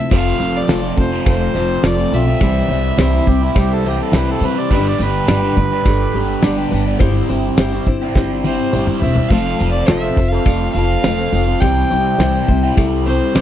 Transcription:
Already playing: C4 E4 A4 E5
0.11 F1 F2 C3 F3 A3 C4 F4 A4 C5 F5, kick, crash, tambourine
0.39 F1 F3 A3 C4 A4, tambourine
0.43 F4
0.57 D5
0.68 F1 F2 C3 F3 A3 C4 F4 A4 D5, snare, ride bell, tambourine
0.82 F3 A3 C4 F4
0.97 F1 C4 F4 A4 C5, muted overdriven electric guitar stroke, kick, tambourine
1.11 F3 A3 C4 F4
1.25 F1 A3 C4 F4 A4 C5, kick, ride bell, tambourine
1.54 F1 F3 A3 C4 F4 A4, tambourine
1.83 F1 F2 C3 F3 A3 C4 F4 A4 C5 D5, snare, ride bell, tambourine
1.97 F3 A3 C4 F4
2.12 B1 F3 A3 C4 F4 A4 E5, tambourine
2.27 F3 A3 C4 F4
2.40 C2 C3 E3 G3 C4 E4 G4 C5, kick, ride bell, tambourine
2.69 C2 E3 G3 C4 E4 C5, tambourine
2.98 C2 C3 E3 G3 C4 E4 G4 C5, snare, ride bell, tambourine
3.13 G3 C4 E4
3.27 C2 C4 E4 G4 C5, muted overdriven electric guitar stroke, kick, tambourine
3.31 G3
3.41 G3 C4 E4
3.54 C2 G3 E4 G4 C5, kick, ride bell, tambourine
3.58 C4 E4 G4 C5
3.74 A4
3.84 E3 G3 C4 E4 G4 C5, tambourine
4.02 A4
4.12 C2 C3 E3 G3 C4 E4 G4 C5, snare, ride bell, tambourine
4.17 B4 C5
4.28 G3 C4 E4 A4
4.41 C3 E3 G3 C4 E4 C5, tambourine
4.46 B4
4.57 G3 C4 E4 D5
4.69 G1 G2 D3 G3 B3 D4 G4 B4, kick, crash, tambourine
4.74 B4
4.89 D5
4.99 G1 G3 B3 D4 G4 B4, tambourine
5.04 B4
5.28 G1 G2 D3 G3 B3 D4 G4 B4, snare, ride bell, tambourine
5.43 G3 B3 D4 G4
5.56 G1 D4 G4 B4, muted overdriven electric guitar stroke, kick, tambourine
5.72 G3 B3 D4 G4
5.85 G1 G3 D4 G4 A4 B4, kick, ride bell, tambourine
6.13 G1 G3 B3 D4 G4 B4
6.42 G1 G2 D3 G3 B3 D4 G4 B4 D5, snare, ride bell, tambourine
6.58 G3 B3 D4 G4
6.71 G1 G3 B3 D4 G4 B4, tambourine
6.86 G3 B3 D4 G4
7.00 G1 G3 C4 E4 G4 C5, kick, ride bell, tambourine
7.29 G1 G3 C4 E4 G4 C5, tambourine
7.58 G1 G3 C4 E4 G4 C5, snare, ride bell, tambourine
7.72 C4 E4 G4, snare
7.87 G1 C4 E4 C5, muted overdriven electric guitar stroke, kick, tambourine
8.02 C4 E4 G4
8.15 G1 G3 C4 E4 G4 C5, kick, snare, tambourine
8.44 G3 C4 E4 G4 C5, high tom, tambourine
8.71 G1 G3 C4 E4 G4 C5, mid tom, tambourine
8.76 C5
8.87 C4 E4 G4, mid tom
9.00 E1 G3 C4 E4 G4 C5 E5, floor tom, tambourine
9.16 C4 E4 G4, floor tom
9.29 F1 F3 A3 C4 F4 A4 C5 F5, kick, crash, tambourine
9.33 A4
9.59 F1 F3 C4 F4 A4 C5, tambourine
9.72 D5
9.86 F1 F3 A3 F4 A4 C5 E5, snare, ride bell, tambourine
9.90 C4 F4 A4
10.03 C4 F4 A4
10.17 F1 C4 F4 C5, muted overdriven electric guitar stroke, kick, tambourine
10.28 F5
10.33 C4 F4 A4
10.45 F1 A3 C4 F4 A4 C5 D5, kick, ride bell, tambourine
10.72 F1 F5, tambourine
10.76 F3 C4 F4 A4 C5
11.03 F1 F3 A3 C4 F4 A4 C5, snare, ride bell, tambourine
11.18 C4 F4 A4
11.32 F1 F3 C4 F4 A4 C5, tambourine
11.47 C4 F4 A4
11.60 C2 C3 E3 G3 C4 E4 G4 C5 G5, kick, ride bell, tambourine
11.64 G4
11.90 C2 G3 C4 E4 G4 C5, tambourine
12.17 C2 C3 E3 G3 E4 G4 C5, snare, ride bell, tambourine
12.21 C4 E4 G4 C5
12.35 C4 E4 G4
12.48 C2 G3 C4 E4 C5, muted overdriven electric guitar stroke, kick, tambourine
12.63 C4 E4 G4
12.75 C2 G3 C4 E4 G4 A4 C5, kick, ride bell, tambourine
13.06 G3 C4 E4 G4 C5, tambourine
13.35 C2 C3 E3 G3 C4 E4 G4 B4 C5, snare, ride bell, tambourine

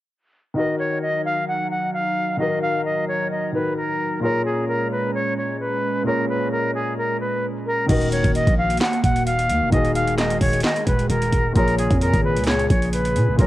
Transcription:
0.54 D#3 F#3 D#4 F#4 D#5 A#5
0.59 A#4
0.79 C#5
1.02 D#5
1.25 F5
1.48 F#5
1.71 F#5
1.94 F5
2.37 D#3 D#4 F#4 D#5
2.42 A#4
2.62 F5
2.85 D#5
3.08 C#5
3.31 D#5
3.52 D#3 D#4 F#4 A#4 B4
3.77 A#4
4.20 A#2 G#3 C#4 F4 G#4 A#4
4.25 C#5
4.45 G#4
4.68 A#4
4.92 B4
5.14 C#5
5.37 C#5
5.60 B4
6.03 A#2 F4 G#4 A#4
6.08 C#5
6.29 B4
6.52 A#4
6.75 G#4
6.98 A#4
7.20 B4
7.66 A#4
7.86 D#1 D#3 A#3 D#4 F#4 D#5, kick, closed hi-hat, crash
7.92 A#4
8.01 closed hi-hat
8.12 C#5, closed hi-hat
8.24 D#1, kick, closed hi-hat
8.35 D#5, closed hi-hat
8.47 A#1, kick, closed hi-hat
8.58 F5
8.70 closed hi-hat
8.77 F#5, snare, closed hi-hat
8.82 clap, closed hi-hat
8.93 closed hi-hat
9.04 D#1 F#5, kick, closed hi-hat
9.16 closed hi-hat
9.26 F5, closed hi-hat
9.39 closed hi-hat
9.49 D#2, closed hi-hat
9.62 D#1
9.70 D#1 D#3 G#3 D#4 F#4 D#5, kick, closed hi-hat
9.75 G#4
9.85 closed hi-hat
9.95 F5, closed hi-hat
10.07 closed hi-hat
10.18 D#5, snare, clap, closed hi-hat
10.30 closed hi-hat
10.41 D#1 C#5, kick, open hi-hat
10.53 closed hi-hat
10.60 D#5, snare, closed hi-hat
10.65 clap, closed hi-hat
10.76 closed hi-hat
10.87 D#1 B4, kick, closed hi-hat
10.99 closed hi-hat
11.10 D#1 A#4, closed hi-hat
11.22 closed hi-hat
11.33 D#1, kick, closed hi-hat
11.53 A#1 A#2 C#3 F4 G#4 A#4, kick, closed hi-hat
11.58 C#5
11.68 closed hi-hat
11.78 G#4, closed hi-hat
11.91 F2, kick, closed hi-hat
12.01 A#4, closed hi-hat
12.14 G#1, kick, closed hi-hat
12.24 B4
12.36 C#2, closed hi-hat
12.44 C#5, snare, closed hi-hat
12.48 clap, closed hi-hat
12.59 closed hi-hat
12.70 A#1 C#5, kick, closed hi-hat
12.82 closed hi-hat
12.93 B4, closed hi-hat
13.05 closed hi-hat
13.16 A#2, closed hi-hat
13.28 A#1
13.36 A#1 A#2 F4 G#4 A#4, kick, closed hi-hat
13.42 C#5

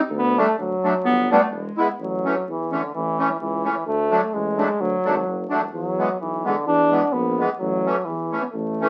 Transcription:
0.10 D2
0.15 B3
0.37 G3 A3 D4
0.58 D2 F#3
0.84 F#3 A3 D4
1.04 G1 B3
1.31 G3 A3 B3 D4
1.51 E1 G#3
1.78 G#3 B3 E4
1.99 A1
2.03 F#3
2.25 E3 A3 C#4
2.47 E2 E3
2.71 D3 E3 A3 C#4
2.95 A1 E3
3.18 E3 A3 C#4
3.41 C#2 E3
3.64 E3 A3 C#4
3.86 D2 A3
4.11 F#3 A3 D4
4.32 A1 G#3
4.58 F#3 A3 D4
4.79 D2 F#3
5.04 G#1 F#3 A3 D4
5.27 F#1
5.49 E1 F#3 A3 D4
5.73 E2 F#3
5.98 E3 G#3 B3
6.20 B1 E3
6.45 D3 E3 G#3 B3
6.67 E2 D4
6.91 E3 G#3 B3
7.13 A#1 B3
7.39 E3 G#3 B3
7.59 A1 F#3
7.86 E3 A3 C#4
8.05 E2 E3
8.32 E3 A3 C#4
8.41 B3
8.52 A1 A3
8.81 E3 A3 C#4

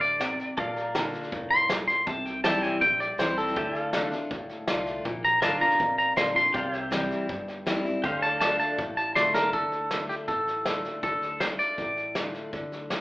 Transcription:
Already playing: A1 D3 A4 D5 F5
0.01 D5, snare
0.20 C3, snare, hi-hat pedal
0.39 snare
0.57 A#1 A#2 A4 D5 F5, kick, snare
0.76 A#4, snare
0.95 D3 A#3 D4 F4, snare, hi-hat pedal
1.14 snare
1.23 snare
1.32 F1 A2, kick, snare
1.51 C6, snare
1.69 A#2, snare, hi-hat pedal
1.88 C6, snare
2.07 C2 C3 A5, kick, snare
2.26 G5, snare
2.44 E3 G3 C4 E4 G4 D5 A5, snare, hi-hat pedal
2.48 E5
2.63 G#5, snare
2.72 C5
2.81 A#1 G2 G5, kick, snare
3.00 D5, snare
3.18 C2 E3 G3 C4 E4 C5, snare, hi-hat pedal
3.38 A4, snare
3.47 snare
3.56 D2 D3 G4 D5 E5, kick, snare
3.75 F5, snare
3.82 A4
3.93 D3 A3 D4 F4, snare, hi-hat pedal
4.12 D4 F4, snare
4.30 D2 A2, kick, snare
4.49 snare
4.67 C2 D3 A3 D4 F4, snare, hi-hat pedal
4.86 snare
5.05 A#1 A#2, kick, snare
5.24 A#5, snare
5.42 G1 D3 A#3 D4 F4 A#4 D5 F5 A5, snare, hi-hat pedal
5.61 D4 F4 A#5, snare
5.70 snare
5.80 A1 F2, kick, snare
5.98 A#5, snare
6.16 A#1 D3 A#3 D4 F4 C6, snare, hi-hat pedal
6.35 D4 F4 C6, snare
6.54 C2 C3 G4 D5 F5, kick, snare
6.73 E5, snare
6.80 C5
6.91 E3 G3 C4 E4, snare, hi-hat pedal
7.11 snare
7.29 G1 G2, kick, snare
7.48 snare
7.66 E3 G3 C4 E4, snare, hi-hat pedal
7.85 C4 E4, snare
8.04 D2 D3 G4 C5 F5, kick, snare
8.22 A5, snare
8.29 A4 D5
8.40 D3 A3 D4 F4 A5, snare, hi-hat pedal
8.59 A5, snare
8.78 A1 A2, kick, snare
8.97 A5, snare
9.15 D3 A3 D4 F4 D5 C6, snare, hi-hat pedal
9.34 A#4 A5, snare
9.53 D2 D3 A4, kick, snare
9.72 snare
9.90 D3 A3 D4 F4, snare, hi-hat pedal
10.09 G4, snare
10.28 A1 A2 A4, kick, snare
10.47 snare
10.65 D3 A3 D4 F4, snare, hi-hat pedal
10.85 snare
11.03 D2 D3 A4, kick, snare
11.22 snare
11.40 D3 A3 D4 F4 C5, snare, hi-hat pedal
11.59 D5, snare
11.78 A1 A2, kick, snare
11.97 snare
12.15 D3 A3 D4 F4, snare, hi-hat pedal
12.34 snare
12.53 D2 D3, kick, snare
12.72 snare
12.90 D3 A3 D4 F4, snare, hi-hat pedal

